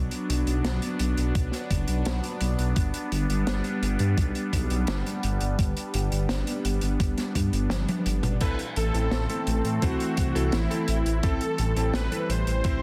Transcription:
Already playing: analog synth pad F#3 B3 D4
0.11 closed hi-hat
0.29 detuned saw bass B1, closed hi-hat
0.47 detuned saw bass B1, closed hi-hat
0.65 detuned saw bass B1, snare, closed hi-hat
0.82 closed hi-hat
0.99 detuned saw bass B1, closed hi-hat
1.17 detuned saw bass B1, closed hi-hat
1.35 detuned saw bass B1, kick, closed hi-hat
1.52 snare, closed hi-hat
1.71 detuned saw bass F#1, kick, closed hi-hat
1.88 detuned saw bass B1, closed hi-hat
2.05 detuned saw bass B1, snare, closed hi-hat
2.24 closed hi-hat
2.41 detuned saw bass B1, closed hi-hat
2.59 detuned saw bass B1, closed hi-hat
2.76 detuned saw bass G1, analog synth pad G3, kick, closed hi-hat
2.94 closed hi-hat
3.12 detuned saw bass G1, closed hi-hat
3.29 detuned saw bass G1, closed hi-hat
3.47 detuned saw bass G1, snare, closed hi-hat
3.64 closed hi-hat
3.82 detuned saw bass G1, closed hi-hat
3.99 detuned saw bass G2, closed hi-hat
4.18 detuned saw bass B1, kick, closed hi-hat
4.35 closed hi-hat
4.53 detuned saw bass B1, kick, closed hi-hat
4.70 detuned saw bass B1, closed hi-hat
4.87 detuned saw bass G1, snare, closed hi-hat
5.06 closed hi-hat
5.23 detuned saw bass G1, closed hi-hat
5.41 detuned saw bass G1, closed hi-hat
5.59 detuned saw bass G1, kick, closed hi-hat
5.77 closed hi-hat
5.94 detuned saw bass G1, closed hi-hat
6.12 detuned saw bass G1, closed hi-hat
6.29 detuned saw bass G1, snare, closed hi-hat
6.47 closed hi-hat
6.65 detuned saw bass G1, closed hi-hat
6.81 detuned saw bass G1, closed hi-hat
7.00 detuned saw bass G1, kick, closed hi-hat
7.18 snare, closed hi-hat
7.35 detuned saw bass G2, kick, closed hi-hat
7.53 detuned saw bass G1, closed hi-hat
7.70 detuned saw bass G1, snare, closed hi-hat, high tom
7.88 closed hi-hat, high tom
8.06 detuned saw bass G1, closed hi-hat
8.23 detuned saw bass G1, closed hi-hat, mid tom
8.41 detuned saw bass A1, analog synth pad E3 A3 C4, electric grand piano C4 E4 A4, supersaw synth B4, kick, closed hi-hat, crash
8.59 closed hi-hat
8.76 detuned saw bass A1, supersaw synth A4, closed hi-hat
8.94 detuned saw bass A1, electric grand piano C4 E4 A4, closed hi-hat
9.11 detuned saw bass A1, snare, closed hi-hat
9.29 electric grand piano C4 E4 A4, closed hi-hat
9.47 detuned saw bass A1, closed hi-hat
9.65 detuned saw bass A2, closed hi-hat
9.82 detuned saw bass C2, electric grand piano C4 E4 C5, supersaw synth F#4, kick, closed hi-hat
10.00 closed hi-hat
10.17 detuned saw bass C2, kick, closed hi-hat
10.35 detuned saw bass C2, electric grand piano C4 E4 A4, closed hi-hat
10.52 detuned saw bass A1, supersaw synth E4, snare, closed hi-hat
10.71 electric grand piano C4 E4 A4, closed hi-hat
10.88 detuned saw bass A1, closed hi-hat
11.06 detuned saw bass A1, closed hi-hat
11.23 detuned saw bass A1, analog synth pad G3, electric grand piano C4 E4 A4, supersaw synth A4, kick, closed hi-hat
11.41 closed hi-hat
11.58 detuned saw bass A1, closed hi-hat
11.76 detuned saw bass A1, electric grand piano C4 E4 A4, closed hi-hat
11.94 detuned saw bass A1, supersaw synth B4, snare, closed hi-hat
12.12 electric grand piano C4 E4 A4, closed hi-hat
12.29 detuned saw bass A1, supersaw synth C5, closed hi-hat
12.47 detuned saw bass A1, closed hi-hat
12.64 detuned saw bass A1, electric grand piano C4 E4 C5, kick, closed hi-hat

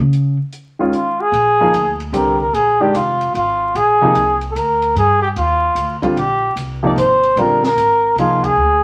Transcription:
0.00 upright bass C#3
0.13 closed hi-hat
0.53 closed hi-hat
0.79 grand piano D#3 G#3 C#4 F4
0.93 muted trumpet F4, closed hi-hat
1.21 muted trumpet G#4
1.32 upright bass A#1, ride
1.60 grand piano F3 A#3 D#4 G#4
1.73 upright bass D2, hi-hat pedal, ride
2.00 ride
2.12 upright bass C2, grand piano D3 G3 C4 G4, muted trumpet A#4, hi-hat pedal, ride
2.41 muted trumpet A#4
2.53 upright bass A#1, muted trumpet G#4, ride
2.81 grand piano D#3 G#3 D4 G4, muted trumpet G4
2.94 upright bass F1, muted trumpet F4, hi-hat pedal, ride
3.21 ride
3.34 upright bass G#1, muted trumpet F4, ride
3.75 upright bass A#1, muted trumpet G#4, ride
4.01 grand piano C3 F3 A#3 D#4
4.15 upright bass C2, hi-hat pedal, ride
4.41 ride
4.51 upright bass D2, muted trumpet A4
4.56 muted trumpet A#4, hi-hat pedal, ride
4.82 ride
4.96 upright bass G2, muted trumpet G#4, ride
5.22 muted trumpet G4
5.36 upright bass D#2, muted trumpet F4, ride
5.75 upright bass D2, hi-hat pedal, ride
6.02 grand piano D3 G3 C4 F4, muted upright bass stroke, kick, ride
6.16 upright bass A#1, muted trumpet G4, ride
6.56 upright bass C2, hi-hat pedal, ride
6.83 grand piano C3 F3 A#3 D#4, muted trumpet D5
6.96 upright bass G#1, muted trumpet C5, hi-hat pedal, ride
7.23 ride
7.36 upright bass A#1, grand piano D3 G3 C4 F4, muted trumpet A#4, ride
7.64 muted trumpet A#4, snare
7.76 upright bass G#1, hi-hat pedal, ride
8.16 upright bass C2, grand piano F3 A#3 D#4 G#4, muted trumpet F4, ride
8.44 muted trumpet G#4, kick, ride
8.57 upright bass D2

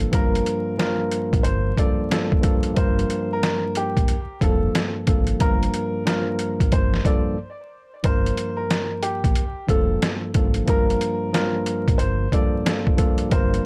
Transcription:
Already playing: tine electric piano G2 F3 A#3 A4
0.12 fingered electric bass G1, tine electric piano G2 F3 A#3 A#4, upright piano A#4, kick, closed hi-hat
0.35 closed hi-hat
0.46 closed hi-hat
0.77 tine electric piano G2 F3 A#3 A#4, snare, closed hi-hat
1.12 closed hi-hat
1.33 fingered electric bass A#1, kick, closed hi-hat
1.43 fingered electric bass G1, upright piano C5, closed hi-hat
1.77 tine electric piano G2 F3 A#3 A4, upright piano D5, kick, closed hi-hat
2.10 tine electric piano G2 F3 A#3 A4, snare, closed hi-hat
2.32 kick
2.41 tine electric piano G2 F3 A#3 A4, kick, closed hi-hat
2.63 closed hi-hat
2.75 fingered electric bass G1, tine electric piano G2 F3 A#3 A#4, upright piano C5, kick, closed hi-hat
2.99 closed hi-hat
3.10 closed hi-hat
3.33 upright piano A#4
3.43 snare, closed hi-hat
3.75 upright piano G4, closed hi-hat
3.97 fingered electric bass A#1, kick, closed hi-hat
4.08 closed hi-hat
4.40 fingered electric bass F1, tine electric piano G2 F3 A#3 A4, upright piano A4, kick, closed hi-hat
4.75 snare, closed hi-hat
5.06 fingered electric bass G#1, tine electric piano G2 F3 A#3 A4, kick, closed hi-hat
5.27 closed hi-hat
5.39 fingered electric bass G1, tine electric piano G2 F3 A#3 A#4, upright piano A#4, kick, closed hi-hat
5.63 closed hi-hat
5.74 closed hi-hat
6.05 tine electric piano G2 F3 A#3 A#4, snare, closed hi-hat
6.39 closed hi-hat
6.60 fingered electric bass A#1, kick, closed hi-hat
6.72 fingered electric bass G1, upright piano C5, kick, closed hi-hat
6.94 snare
7.04 tine electric piano G2 F3 A#3 A4, upright piano D5, kick, closed hi-hat
8.02 fingered electric bass G1, tine electric piano G2 F3 A#3 A#4, upright piano C5, kick, closed hi-hat
8.26 closed hi-hat
8.37 closed hi-hat
8.57 upright piano A#4
8.71 snare, closed hi-hat
9.02 upright piano G4, closed hi-hat
9.24 fingered electric bass A#1, kick, closed hi-hat
9.35 closed hi-hat
9.68 fingered electric bass F1, tine electric piano G2 F3 A#3 A4, upright piano A4, kick, closed hi-hat
10.02 snare, closed hi-hat
10.34 fingered electric bass G#1, tine electric piano G2 F3 A#3 A4, kick, closed hi-hat
10.54 closed hi-hat
10.67 fingered electric bass G1, tine electric piano G2 F3 A#3 A#4, upright piano A#4, kick, closed hi-hat
10.90 closed hi-hat
11.01 closed hi-hat
11.32 tine electric piano G2 F3 A#3 A#4, snare, closed hi-hat
11.66 closed hi-hat
11.88 fingered electric bass A#1, kick, closed hi-hat
11.98 fingered electric bass G1, upright piano C5, closed hi-hat
12.31 tine electric piano G2 F3 A#3 A4, upright piano D5, kick, closed hi-hat
12.65 tine electric piano G2 F3 A#3 A4, snare, closed hi-hat
12.87 kick
12.96 tine electric piano G2 F3 A#3 A4, kick, closed hi-hat
13.18 closed hi-hat
13.30 fingered electric bass G1, tine electric piano G2 F3 A#3 A#4, upright piano C5, kick, closed hi-hat
13.54 closed hi-hat

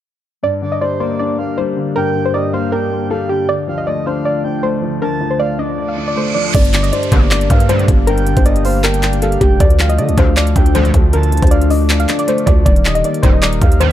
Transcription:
0.43 grand piano G2, ambient pad G2 D3 A#3 G4, synth pluck D5
0.62 grand piano D3, soft synth lead D5
0.72 synth pluck D#5
0.81 grand piano G3, soft synth lead C5, synth pluck D5
1.00 grand piano A#3, synth pluck C5, soft synth lead D5
1.19 grand piano D4, synth pluck D5
1.39 grand piano A#3, soft synth lead F5
1.58 grand piano G3, synth pluck C5
1.77 grand piano D3
1.96 grand piano G2, synth pluck A#4, soft synth lead G5
2.15 grand piano D3
2.25 synth pluck C5
2.34 grand piano G3, synth pluck D5, soft synth lead D#5
2.53 grand piano A#3, synth pluck C5, soft synth lead F5
2.72 grand piano D4, synth pluck A#4, soft synth lead G5
2.91 grand piano A#3
3.10 grand piano G3, synth pluck A4, soft synth lead F5
3.29 grand piano D3, synth pluck G4, soft synth lead G5
3.48 ambient pad D2 A3 F4, grand piano D3, synth pluck D5
3.68 grand piano F3, soft synth lead F5
3.78 synth pluck D#5
3.87 grand piano A3, synth pluck D5, soft synth lead D#5
4.06 grand piano D4, synth pluck C5, soft synth lead F5
4.25 grand piano D5, synth pluck D5
4.44 grand piano D4, soft synth lead G5
4.63 grand piano A3, synth pluck C5
4.82 grand piano F3
5.01 grand piano D3, synth pluck A#4, soft synth lead A5
5.21 grand piano F3
5.31 synth pluck C5
5.39 grand piano A3, synth pluck D5, soft synth lead F5
5.59 grand piano D4, soft synth lead D5, synth pluck D#5
5.78 grand piano D5, reverse cymbal
5.88 synth pluck F5
5.97 grand piano D4
6.08 synth pluck D5
6.16 grand piano A3, synth pluck C5
6.35 grand piano F3, synth pluck D5
6.54 808-style bass G1, grand piano G2, ambient pad G3 G4 A#4 D5, synth pluck D5, kick, closed hi-hat, crash, downlifter
6.65 closed hi-hat
6.73 grand piano D3, soft synth lead D5, clap, closed hi-hat
6.83 synth pluck D#5, closed hi-hat
6.93 grand piano G3, soft synth lead C5, synth pluck D5, closed hi-hat
7.03 closed hi-hat
7.12 808-style bass G1, analog polysynth A#1 G2 D3, grand piano A#3, synth pluck C5, soft synth lead D5, kick, closed hi-hat
7.31 grand piano D4, synth pluck D5, clap, closed hi-hat
7.41 closed hi-hat
7.50 808-style bass G2, grand piano A#3, soft synth lead F5, kick, closed hi-hat
7.60 closed hi-hat
7.69 analog polysynth A#1 G2 D3, grand piano G3, synth pluck C5, closed hi-hat
7.79 closed hi-hat
7.88 808-style bass G1, grand piano D3, kick, closed hi-hat
8.07 grand piano G2, synth pluck A#4, soft synth lead G5, closed hi-hat
8.18 closed hi-hat
8.26 grand piano D3, closed hi-hat
8.37 808-style bass G1, synth pluck C5, kick, closed hi-hat
8.46 grand piano G3, synth pluck D5, soft synth lead D#5, closed hi-hat
8.56 closed hi-hat
8.65 grand piano A#3, synth pluck C5, soft synth lead F5, open hi-hat
8.84 grand piano D4, synth pluck A#4, soft synth lead G5, clap, closed hi-hat
8.94 closed hi-hat
9.03 grand piano A#3, clap, closed hi-hat
9.13 closed hi-hat
9.22 grand piano G3, synth pluck A4, soft synth lead F5, closed hi-hat
9.32 closed hi-hat
9.41 808-style bass F1, grand piano D3, synth pluck G4, soft synth lead G5, kick, closed hi-hat
9.60 808-style bass D2, grand piano D3, ambient pad D3 D4 F4 A4, synth pluck D5, kick, closed hi-hat
9.70 closed hi-hat
9.79 grand piano F3, soft synth lead F5, clap, closed hi-hat
9.89 synth pluck D#5, closed hi-hat
9.98 808-style bass D3, grand piano A3, synth pluck D5, soft synth lead D#5, closed hi-hat
10.09 808-style bass D2, closed hi-hat
10.18 analog polysynth A1 F2 D3, 808-style bass D2, grand piano D4, synth pluck C5, soft synth lead F5, kick, closed hi-hat
10.37 grand piano D5, synth pluck D5, clap, closed hi-hat
10.47 closed hi-hat
10.56 808-style bass D2, grand piano D4, soft synth lead G5, kick, closed hi-hat
10.66 closed hi-hat
10.74 analog polysynth A1 F2 D3, grand piano A3, synth pluck C5, closed hi-hat
10.85 closed hi-hat
10.94 808-style bass D2, grand piano F3, kick, closed hi-hat
11.13 grand piano D3, synth pluck A#4, soft synth lead A5, closed hi-hat
11.23 closed hi-hat
11.32 grand piano F3, closed hi-hat
11.37 closed hi-hat
11.42 808-style bass D2, synth pluck C5, kick, closed hi-hat
11.47 closed hi-hat
11.51 grand piano A3, synth pluck D5, soft synth lead F5, closed hi-hat
11.61 closed hi-hat
11.70 grand piano D4, soft synth lead D5, synth pluck D#5, open hi-hat
11.89 grand piano D5, clap, closed hi-hat
12.00 synth pluck F5, closed hi-hat
12.09 grand piano D4, clap, closed hi-hat
12.19 synth pluck D5, closed hi-hat
12.27 grand piano A3, synth pluck C5, closed hi-hat
12.38 closed hi-hat
12.46 808-style bass D2, grand piano F3, synth pluck D5, kick, closed hi-hat
12.66 808-style bass D#1, grand piano D#3, ambient pad D#3 D#4 G4 A#4, synth pluck D5, kick, closed hi-hat
12.76 closed hi-hat
12.85 grand piano G3, soft synth lead D#5, clap, closed hi-hat
12.95 synth pluck D#5, closed hi-hat
13.04 grand piano A#3, soft synth lead D5, synth pluck D5, closed hi-hat
13.14 closed hi-hat
13.23 808-style bass D#1, analog polysynth A#1 G2 D#3, grand piano D#4, synth pluck C5, soft synth lead D#5, kick, closed hi-hat
13.42 grand piano A#4, synth pluck D5, clap, closed hi-hat
13.53 closed hi-hat
13.62 808-style bass D#2, grand piano D#4, soft synth lead F5, kick, closed hi-hat
13.72 closed hi-hat
13.80 analog polysynth A#1 G2 D#3, grand piano A#3, synth pluck C5, closed hi-hat

